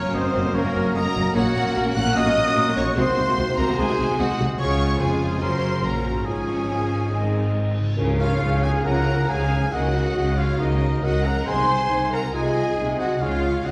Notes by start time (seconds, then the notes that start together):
Already playing: F#2 F#3 A#3 C#4 F#4 A#4 C#5
0.03 F#2 A#3 C#4
0.14 F#1 F#2 A#3 C4 C#4 C5 D#5
0.24 F#2 A#3 C#4
0.34 F#1 F#2 A#3 C#4
0.44 F#2 A#3 C#4
0.54 F#1 F#2 A#3 C#4 A#4 C#5
0.64 F#2 A#3 C#4
0.74 F#1 F#2 A#3 C#4
0.84 F#2 A#3 C#4
0.95 F#1 F#2 A#3 C#4 A#4 D#5 A#5
1.05 F#2 A#3 C#4
1.15 F#1 F#2 A#2 A#3 C#4
1.21 C#4
1.26 F#4
1.31 F#4 A#4 F#5
1.35 A#1 A#2 A#3 C#4 F#4 C#5 F#5
1.55 A#1 A#2 A#3 C#4
1.65 A#2 A#3 C#4
1.75 A#1 A#2 A#3 C#4 A#4
1.85 A#2 A#3 C#4
1.95 A#1 A#2 A#3 C#4 F#5 F#6
2.05 A#2 A#3 C#4
2.15 A#1 A#2 A#3 C#4 F#4 D#5 D#6
2.26 A#2 A#3 C#4
2.35 A#1 A#2 A#3 C#4
2.46 A#2 A#3 C#4
2.56 A#1 A#2 A#3 C#4
2.67 A#2 A#3 C#4
2.76 A#1 A#2 C3 A#3 C#4 C#5 C#6
2.83 D#4
2.88 F#4
2.92 G#4 C5
2.96 C2 C3 D#3 G#3 C4 F#4 C5 C6
3.17 C2 C3 G#3 F#4
3.27 C3 G#3 F#4
3.37 C2 C3 G#3 F#4
3.48 C3 G#3 F#4
3.58 C2 C3 G#3 F#4 A#4 A#5
3.68 C3 G#3 F#4
3.77 C2 C3 G#3 F#4 G#4 G#5
3.89 C3 G#3 F#4
3.99 C2 C3 G#3 F#4
4.09 C3 G#3 F#4
4.19 C2 C3 G#3 F#4 D#5 F#5
4.29 C3 G#3 F#4
4.40 C2 C3 C#3 G#3 F#4
4.47 C#4
4.51 F4
4.56 G#3 G#4 C#5
4.60 C#2 C#3 G#3 C#4 F4 G#4 C#5 C#6
5.00 F1 F2 C#3 G#3 C#4 F4 G#4 C5 G#5
5.24 F#2
5.29 C#4
5.33 F#4
5.38 A#4 C6
5.42 F#1 F#2 C#3 F#3 C#4 F#4 A#4 C5 C6
5.83 A#1 A#2 C#3 F#3 C#4 F#4 A#4 A#5
6.05 G#2 C5
6.12 C#4
6.17 F4
6.21 G#2 G#3 G#4 C#5
6.26 G#1 G#2 F3 C#4 F4 G#4 C#5 G#5
6.93 G#2
6.97 C4
7.02 D#4
7.06 D#5
7.11 G#1 G#2 D#3 G#3 C4 D#4 D#5
7.79 C#3
7.83 G#3
7.88 F4
7.92 C#5
7.97 C#2 C#3 F3 C#4 A#4, tam-tam
8.18 F4 C#5 F5
8.41 C#2 C#3 G#4
8.62 G#4 F5 G#5
8.85 C#2 C#3 F3 C#4 F4 A#4 F#5 A#5
9.27 C#2 C#3 G#4 F5 G#5
9.55 C#3
9.59 F#3
9.64 D#4
9.68 A#4
9.72 C#2 C#3 D#3 A#3 F#4 A#4 D#5 F#5
10.15 C#2 C#3 F#4
10.37 F4 C#5 F5
10.59 C#2 C#3 D#3 A#3 D#4 A#4 D#5
11.03 C#2 C#3 F#4 A#4 D#5 F#5
11.25 A#4 F#5 A#5
11.29 C3
11.34 F#3
11.38 D#4
11.43 C3 G#4
11.47 C2 D#3 G#3 C5 G#5 C6
11.90 C2 C3 D#4
12.12 A#4 F#5 A#5
12.33 C2 C3 D#3 G#3 F4 G#4 D#5 G#5
12.77 C2 C3 D#4
12.99 F#4 D#5 F#5
13.03 C#3
13.07 G#3
13.12 C#4
13.16 C#3 G#3 G#4
13.21 C#2 C#3 F4 C#5 F5
13.64 C#2 C#3 F#4 D#5 F#5